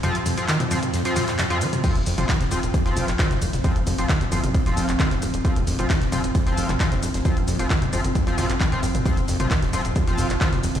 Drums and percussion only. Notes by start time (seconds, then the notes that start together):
0.03 closed hi-hat, mid tom, shaker
0.15 closed hi-hat, shaker
0.26 closed hi-hat, open hi-hat, mid tom, shaker
0.37 snare, closed hi-hat, shaker
0.48 snare, clap, closed hi-hat, shaker
0.60 closed hi-hat, mid tom, shaker
0.71 closed hi-hat, open hi-hat, shaker
0.83 closed hi-hat, mid tom, shaker
0.94 snare, closed hi-hat, shaker
1.05 snare, closed hi-hat, shaker
1.16 snare, closed hi-hat, open hi-hat, mid tom, shaker
1.27 snare, clap, closed hi-hat, shaker
1.39 snare, clap, closed hi-hat, mid tom, shaker
1.50 snare, closed hi-hat, shaker
1.61 closed hi-hat, open hi-hat, shaker
1.73 closed hi-hat, mid tom, shaker
1.84 kick, closed hi-hat, mid tom, crash, shaker
1.95 closed hi-hat, shaker
2.06 closed hi-hat, open hi-hat, shaker
2.18 closed hi-hat, mid tom, shaker
2.29 kick, snare, clap, closed hi-hat, shaker
2.40 snare, closed hi-hat, mid tom, shaker
2.51 closed hi-hat, open hi-hat, shaker
2.63 closed hi-hat, shaker
2.74 kick, closed hi-hat, mid tom, shaker
2.85 snare, closed hi-hat, shaker
2.97 closed hi-hat, open hi-hat, mid tom, shaker
3.08 clap, closed hi-hat, shaker
3.19 kick, snare, clap, closed hi-hat, shaker
3.30 snare, closed hi-hat, mid tom, shaker
3.42 closed hi-hat, open hi-hat, shaker
3.53 snare, closed hi-hat, mid tom, shaker
3.64 kick, closed hi-hat, shaker
3.76 closed hi-hat, shaker
3.87 closed hi-hat, open hi-hat, mid tom, shaker
3.98 snare, closed hi-hat, shaker
4.09 kick, snare, clap, closed hi-hat, mid tom, shaker
4.21 closed hi-hat, shaker
4.32 closed hi-hat, open hi-hat, shaker
4.44 closed hi-hat, mid tom, shaker
4.54 kick, closed hi-hat, shaker
4.66 snare, closed hi-hat, mid tom, shaker
4.77 snare, closed hi-hat, open hi-hat, shaker
4.89 clap, closed hi-hat, shaker
4.99 kick, snare, clap, closed hi-hat, mid tom, shaker
5.11 snare, closed hi-hat, shaker
5.22 closed hi-hat, open hi-hat, mid tom, shaker
5.34 closed hi-hat, shaker
5.45 kick, closed hi-hat, shaker
5.56 closed hi-hat, mid tom, shaker
5.67 closed hi-hat, open hi-hat, shaker
5.79 closed hi-hat, mid tom, shaker
5.89 kick, snare, clap, closed hi-hat, shaker
6.01 snare, closed hi-hat, shaker
6.12 closed hi-hat, open hi-hat, mid tom, shaker
6.24 closed hi-hat, shaker
6.35 kick, closed hi-hat, mid tom, shaker
6.46 snare, closed hi-hat, shaker
6.57 closed hi-hat, open hi-hat, shaker
6.69 clap, closed hi-hat, mid tom, shaker
6.80 kick, snare, clap, closed hi-hat, shaker
6.91 snare, closed hi-hat, mid tom, shaker
7.03 closed hi-hat, open hi-hat, shaker
7.14 snare, closed hi-hat, shaker
7.25 kick, closed hi-hat, mid tom, shaker
7.37 closed hi-hat, shaker
7.47 closed hi-hat, open hi-hat, mid tom, shaker
7.59 snare, closed hi-hat, shaker
7.70 kick, snare, clap, closed hi-hat, shaker
7.82 closed hi-hat, mid tom, shaker
7.93 closed hi-hat, open hi-hat, shaker
8.04 closed hi-hat, mid tom, shaker
8.15 kick, closed hi-hat, shaker
8.27 snare, closed hi-hat, shaker
8.38 snare, closed hi-hat, open hi-hat, mid tom, shaker
8.50 clap, closed hi-hat, shaker
8.60 kick, snare, clap, closed hi-hat, mid tom, shaker
8.72 snare, closed hi-hat, shaker
8.83 closed hi-hat, open hi-hat, shaker
8.95 closed hi-hat, mid tom, shaker
9.06 kick, closed hi-hat, mid tom, shaker
9.17 closed hi-hat, shaker
9.28 closed hi-hat, open hi-hat, shaker
9.40 closed hi-hat, mid tom, shaker
9.51 kick, snare, clap, closed hi-hat, shaker
9.62 snare, closed hi-hat, mid tom, shaker
9.73 closed hi-hat, open hi-hat, shaker
9.85 closed hi-hat, shaker
9.96 kick, closed hi-hat, mid tom, shaker
10.07 snare, closed hi-hat, shaker
10.17 closed hi-hat, open hi-hat, mid tom, shaker
10.30 clap, closed hi-hat, shaker
10.41 kick, snare, clap, closed hi-hat, shaker
10.52 snare, closed hi-hat, mid tom, shaker
10.63 closed hi-hat, open hi-hat, shaker
10.75 snare, closed hi-hat, mid tom, shaker